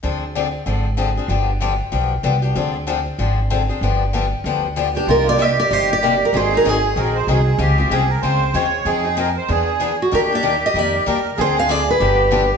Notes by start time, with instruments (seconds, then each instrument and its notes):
0.03 upright bass D2, steel-string acoustic guitar D3 F3 C4 D4 G#4
0.35 steel-string acoustic guitar D3 F3 C4 D4 G#4
0.66 upright bass G#1, steel-string acoustic guitar D3 F3 C4 D4 G#4
0.97 steel-string acoustic guitar D3 F3 C4 D4 G#4
1.17 steel-string acoustic guitar C4 D4 G#4
1.28 upright bass G1, steel-string acoustic guitar D3 F3 B3 D4 G4
1.60 steel-string acoustic guitar D3 F3 B3 D4 G4
1.92 upright bass B1, steel-string acoustic guitar D3 F3 B3 D4 G4
2.23 upright bass C2, steel-string acoustic guitar D3 F3 B3 D4 G4
2.42 steel-string acoustic guitar B3 D4 G4
2.55 upright bass D2, steel-string acoustic guitar D3 F3 C4 D4 G#4
2.87 steel-string acoustic guitar D3 F3 C4 D4 G#4
3.19 upright bass G#1, steel-string acoustic guitar D3 F3 C4 D4 G#4
3.50 steel-string acoustic guitar D3 F3 C4 D4 G#4
3.69 steel-string acoustic guitar C4 D4 G#4
3.81 upright bass G1, steel-string acoustic guitar D3 F3 B3 D4 G4
4.13 steel-string acoustic guitar D3 F3 B3 D4 G4
4.44 upright bass D2, steel-string acoustic guitar D3 F3 B3 D4 G4
4.76 steel-string acoustic guitar D3 F3 B3 D4 G4
4.95 steel-string acoustic guitar B3 D4 G4
5.07 upright bass C2, steel-string acoustic guitar C3 G3 A#3 D#4 G4 A#4, accordion F4
5.26 steel-string acoustic guitar A#3 D#4 G4 D5
5.38 steel-string acoustic guitar C3 G3 A#3 D#4 G4 D#5, accordion G4
5.60 steel-string acoustic guitar D5
5.71 upright bass G1, steel-string acoustic guitar C3 G3 A#3 D#4 G4 C5
5.93 steel-string acoustic guitar D5
6.03 steel-string acoustic guitar C3 G3 A#3 D#4 G4
6.25 steel-string acoustic guitar A#4
6.33 upright bass G#1, steel-string acoustic guitar D#3 F#3 C4 D#4 G#4 C5, accordion G#4
6.52 steel-string acoustic guitar C4 D#4 G#4
6.57 steel-string acoustic guitar A#4
6.65 upright bass G#1, steel-string acoustic guitar D#3 F#3 C4 D#4 G#4
6.69 steel-string acoustic guitar G#4
6.96 upright bass A#1, steel-string acoustic guitar D#3 F#3 C4 D#4 G#4, accordion A#4
7.15 accordion C5
7.27 upright bass C2, steel-string acoustic guitar D#3 F#3 C4 D#4 G#4, accordion G#4
7.58 upright bass C#2, steel-string acoustic guitar C#3 G#3 C4 F4 G#4, accordion G4
7.78 steel-string acoustic guitar C4 F4 G#4
7.90 upright bass C2, steel-string acoustic guitar C#3 G#3 C4 F4 G#4, accordion G#4
8.09 accordion A#4
8.21 upright bass C#2, steel-string acoustic guitar C#3 G#3 C4 F4 G#4, accordion C5
8.54 upright bass D#2, steel-string acoustic guitar C#3 G#3 C4 F4 G#4, accordion C#5
8.85 upright bass F2, steel-string acoustic guitar F3 C4 D#4 G#4, accordion G#4
9.04 steel-string acoustic guitar C4 D#4 G#4
9.17 steel-string acoustic guitar F3 C4 D#4 G#4, accordion A#4
9.36 accordion C5
9.48 upright bass E2, steel-string acoustic guitar E3 B3 D4 G#4, accordion G#4
9.80 steel-string acoustic guitar E3 B3 D4 G#4
10.02 steel-string acoustic guitar F#4
10.11 upright bass D#2, steel-string acoustic guitar D#3 G3 A#3 D4 G4 A#4, accordion G4
10.31 steel-string acoustic guitar A#3 D4 G4
10.35 steel-string acoustic guitar D5
10.43 steel-string acoustic guitar D#3 G3 A#3 D4 G4
10.66 steel-string acoustic guitar D#5
10.74 upright bass F2, steel-string acoustic guitar D#3 G3 A#3 D4 G4
10.78 steel-string acoustic guitar D5
11.06 upright bass D#2, steel-string acoustic guitar D#3 G3 A#3 D4 G4, accordion A#4
11.37 upright bass D2, steel-string acoustic guitar D3 F3 C4 D4 G#4, accordion G#4
11.41 steel-string acoustic guitar C5
11.57 steel-string acoustic guitar C4 D4 G#4 F5
11.69 steel-string acoustic guitar D3 F3 C4 D4 G#4 D5
11.90 steel-string acoustic guitar B4
11.99 upright bass G1, steel-string acoustic guitar D3 F3 B3 D4 G4, accordion G4
12.31 steel-string acoustic guitar D3 F3 B3 D4 G4, accordion G4